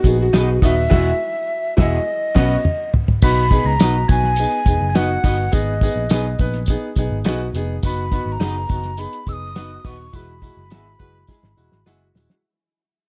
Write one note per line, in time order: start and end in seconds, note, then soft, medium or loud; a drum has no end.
0.00 0.28 A#1 loud
0.00 0.20 F#4 medium
0.04 0.24 B3 medium
0.04 0.24 D#4 medium
0.04 0.24 G#4 medium
0.04 kick medium
0.04 closed hi-hat medium
0.04 tambourine soft
0.21 0.60 F#4 medium
0.33 0.57 B1 loud
0.33 0.53 B3 medium
0.33 0.48 D#4 medium
0.33 0.53 D#4 medium
0.33 0.48 F#4 medium
0.33 0.53 G#4 medium
0.33 0.49 B4 medium
0.33 0.49 D#5 medium
0.33 snare loud
0.33 closed hi-hat medium
0.33 tambourine loud
0.62 0.86 D#1 medium
0.62 0.81 B3 medium
0.62 0.74 D#4 medium
0.62 0.82 D#4 medium
0.62 0.74 F#4 medium
0.62 0.82 F#4 medium
0.62 0.74 B4 medium
0.62 0.74 D#5 medium
0.62 1.75 E5 medium
0.62 kick medium
0.62 open hi-hat medium
0.62 tambourine medium
0.90 1.11 E1 medium
0.90 1.10 G#3 loud
0.90 1.10 B3 loud
0.90 1.10 E4 medium
0.90 1.10 F#4 loud
0.90 1.11 F#4 loud
0.90 1.11 G#4 loud
0.90 1.11 E5 loud
0.90 kick loud
0.90 snare loud
0.90 crash medium
1.77 1.98 E1 medium
1.77 1.97 G#3 medium
1.77 1.97 B3 medium
1.77 1.97 E4 medium
1.77 1.98 F#4 medium
1.77 1.97 G#4 medium
1.77 1.98 G#4 medium
1.77 2.91 D#5 medium
1.77 1.98 E5 medium
1.77 kick loud
1.77 snare loud
2.35 2.55 B1 loud
2.35 2.55 B3 loud
2.35 2.55 C#4 medium
2.35 2.56 C#4 medium
2.35 2.55 F#4 loud
2.35 2.56 F#4 loud
2.35 2.55 B4 medium
2.35 2.55 D#5 loud
2.35 kick medium
2.35 snare loud
2.35 crash medium
2.65 mid tom medium
2.94 floor tom medium
3.08 floor tom medium
3.22 3.58 B1 loud
3.22 3.41 B3 medium
3.22 3.41 D#4 medium
3.22 3.41 F#4 loud
3.22 3.69 B5 loud
3.22 3.63 B6 loud
3.22 kick loud
3.22 crash medium
3.22 tambourine medium
3.51 3.70 B3 medium
3.51 3.70 D#4 medium
3.51 3.70 G#4 loud
3.51 kick medium
3.51 closed hi-hat medium
3.51 tambourine medium
3.65 3.77 C#2 medium
3.65 4.09 A#5 loud
3.65 4.09 A#6 medium
3.79 4.03 B1 medium
3.79 3.99 B3 medium
3.79 3.95 D#4 medium
3.79 3.99 D#4 medium
3.79 3.95 F#4 medium
3.79 3.99 F#4 medium
3.79 3.95 B4 medium
3.79 3.95 D#5 loud
3.79 snare loud
3.79 closed hi-hat loud
3.79 tambourine loud
4.08 4.44 B1 medium
4.08 4.28 B3 medium
4.08 4.28 D#4 medium
4.08 4.28 F#4 medium
4.08 4.90 G#5 loud
4.08 4.84 G#6 medium
4.08 kick medium
4.08 closed hi-hat medium
4.08 tambourine soft
4.24 snare soft
4.36 4.57 B3 medium
4.36 4.57 D#4 medium
4.36 4.57 G#4 medium
4.36 closed hi-hat medium
4.36 tambourine medium
4.66 4.78 E1 loud
4.66 4.85 B3 medium
4.66 4.86 D#4 medium
4.66 4.86 G#4 medium
4.66 kick medium
4.66 closed hi-hat medium
4.66 tambourine soft
4.81 5.16 F#1 medium
4.89 4.97 G#5 medium
4.89 4.96 G#6 medium
4.95 5.14 B3 medium
4.95 5.10 D#4 medium
4.95 5.15 D#4 medium
4.95 5.10 F#4 medium
4.95 5.15 F#4 loud
4.95 5.10 B4 medium
4.95 5.10 D#5 medium
4.95 5.55 F#5 medium
4.95 5.53 F#6 medium
4.95 snare loud
4.95 closed hi-hat medium
4.95 tambourine medium
5.23 5.47 G1 medium
5.23 5.42 B3 medium
5.23 5.42 D#4 medium
5.23 5.35 D#4 medium
5.23 5.43 F#4 medium
5.23 5.35 F#4 medium
5.23 5.36 B4 medium
5.23 5.36 D#5 medium
5.23 kick medium
5.23 open hi-hat medium
5.23 tambourine medium
5.51 5.88 G#1 loud
5.51 5.71 B3 loud
5.51 5.71 D#4 medium
5.51 5.71 G#4 loud
5.51 6.39 D#5 medium
5.51 6.39 D#6 medium
5.51 kick loud
5.51 closed hi-hat medium
5.51 tambourine medium
5.81 6.01 B3 medium
5.81 6.01 D#4 medium
5.81 6.01 G#4 loud
5.81 kick medium
5.81 closed hi-hat medium
5.81 tambourine medium
5.96 6.08 A#1 medium
6.09 6.34 B1 medium
6.09 6.30 B3 medium
6.09 6.25 D#4 medium
6.09 6.30 D#4 medium
6.09 6.25 G#4 loud
6.09 6.30 G#4 medium
6.09 6.25 B4 loud
6.09 6.26 D#5 loud
6.09 snare loud
6.09 closed hi-hat loud
6.09 tambourine loud
6.39 6.75 A#1 medium
6.39 6.58 B3 medium
6.39 6.59 D#4 medium
6.39 6.59 B4 medium
6.39 kick medium
6.39 closed hi-hat medium
6.39 tambourine soft
6.54 snare soft
6.54 closed hi-hat medium
6.66 6.87 B3 medium
6.66 6.88 D#4 medium
6.66 kick medium
6.66 closed hi-hat medium
6.66 tambourine medium
6.70 6.88 G#4 loud
6.96 7.08 B1 medium
6.96 7.16 B3 medium
6.96 7.16 D#4 medium
6.96 7.17 G#4 loud
6.96 kick medium
6.96 closed hi-hat medium
6.96 tambourine soft
7.11 7.23 G#1 medium
7.24 7.49 B1 medium
7.24 7.44 B3 loud
7.24 7.40 D#4 medium
7.24 7.44 D#4 loud
7.24 7.45 F#4 loud
7.24 7.40 G#4 medium
7.24 7.40 B4 medium
7.24 7.40 D#5 medium
7.24 snare loud
7.24 closed hi-hat medium
7.24 tambourine medium
7.54 7.78 F1 medium
7.54 7.74 B3 medium
7.54 7.74 D#4 medium
7.54 7.74 G#4 loud
7.54 closed hi-hat medium
7.54 tambourine medium
7.83 8.19 F#1 loud
7.83 8.02 B3 loud
7.83 8.02 D#4 medium
7.83 8.03 F#4 loud
7.83 8.29 B5 medium
7.83 kick loud
7.83 closed hi-hat medium
7.83 tambourine medium
8.11 8.31 B3 medium
8.11 8.31 D#4 medium
8.11 8.31 F#4 medium
8.11 kick medium
8.11 closed hi-hat medium
8.11 tambourine medium
8.26 8.38 G#1 medium
8.26 8.33 B5 medium
8.32 9.01 A#5 loud
8.40 8.64 F#1 medium
8.40 8.59 B3 medium
8.40 8.55 D#4 medium
8.40 8.59 D#4 medium
8.40 8.55 F#4 medium
8.40 8.60 G#4 medium
8.40 8.56 B4 medium
8.40 8.56 D#5 medium
8.40 snare loud
8.40 closed hi-hat loud
8.40 tambourine loud
8.69 9.05 F#1 medium
8.69 8.88 B3 medium
8.69 8.88 D#4 medium
8.69 8.89 F#4 medium
8.69 kick medium
8.69 closed hi-hat medium
8.69 tambourine soft
8.84 snare soft
8.84 closed hi-hat medium
8.97 9.17 B3 medium
8.97 9.17 D#4 medium
8.97 9.17 G#4 medium
8.97 9.30 B5 medium
8.97 closed hi-hat medium
8.97 tambourine medium
9.13 closed hi-hat medium
9.27 9.41 E1 loud
9.27 9.46 B3 medium
9.27 9.46 D#4 medium
9.27 9.46 G#4 medium
9.27 9.34 E6 loud
9.27 kick medium
9.27 closed hi-hat medium
9.27 tambourine soft
9.33 9.80 D#6 loud
9.41 9.77 F#1 loud
9.55 9.74 B3 medium
9.55 9.70 D#4 medium
9.55 9.75 D#4 medium
9.55 9.75 F#4 loud
9.55 9.71 F#4 medium
9.55 9.71 B4 medium
9.55 9.71 D#5 medium
9.55 snare loud
9.55 closed hi-hat medium
9.55 tambourine medium
9.80 9.88 D#6 medium
9.84 10.08 D#1 medium
9.84 10.03 B3 medium
9.84 9.96 D#4 medium
9.84 10.04 D#4 medium
9.84 10.04 F#4 medium
9.84 9.96 F#4 medium
9.84 9.97 B4 medium
9.84 9.97 D#5 medium
9.84 10.17 C#6 loud
9.84 kick loud
9.84 open hi-hat medium
9.84 tambourine medium
10.13 10.49 E1 loud
10.13 10.32 G#3 medium
10.13 10.32 E4 medium
10.13 10.32 F#4 loud
10.13 10.26 F#4 medium
10.13 10.26 G#4 medium
10.13 10.27 B4 medium
10.13 11.88 B5 medium
10.13 kick loud
10.13 closed hi-hat medium
10.13 tambourine medium
10.42 10.61 G#3 medium
10.42 10.61 E4 medium
10.42 10.62 F#4 medium
10.42 kick medium
10.42 closed hi-hat medium
10.42 tambourine medium
10.57 10.71 F#1 medium
10.70 10.95 G#1 loud
10.70 10.90 G#3 medium
10.70 10.86 B3 medium
10.70 10.90 E4 medium
10.70 10.90 F#4 medium
10.70 10.86 F#4 medium
10.70 10.86 G#4 medium
10.70 10.86 E5 medium
10.70 snare loud
10.70 closed hi-hat medium
10.70 tambourine loud
10.99 11.24 F#1 medium
10.99 11.19 G#3 medium
10.99 11.19 E4 medium
10.99 11.17 F#4 medium
10.99 11.19 F#4 medium
10.99 11.17 G#4 medium
10.99 11.18 B4 loud
10.99 kick medium
10.99 closed hi-hat medium
10.99 tambourine soft
11.27 11.47 G#3 medium
11.27 11.48 E4 medium
11.27 11.48 G#4 loud
11.27 kick medium
11.27 snare medium
11.27 tambourine medium
11.43 11.55 G#1 medium
11.43 snare medium
11.57 11.69 E1 medium
11.57 11.76 G#3 medium
11.57 11.76 E4 medium
11.57 11.77 F#4 medium
11.57 tambourine soft
11.72 11.84 G#1 medium
11.72 snare medium
11.86 12.10 F#1 medium
11.86 12.05 G#3 loud
11.86 12.01 B3 medium
11.86 12.05 E4 medium
11.86 12.01 F#4 medium
11.86 12.06 F#4 loud
11.86 12.02 G#4 medium
11.86 12.02 E5 medium
11.86 snare medium
11.86 tambourine medium
12.15 12.27 D#1 medium
12.15 12.34 G#3 medium
12.15 12.34 E4 medium
12.15 12.34 F#4 medium
12.15 snare medium
12.15 tambourine medium
12.30 snare loud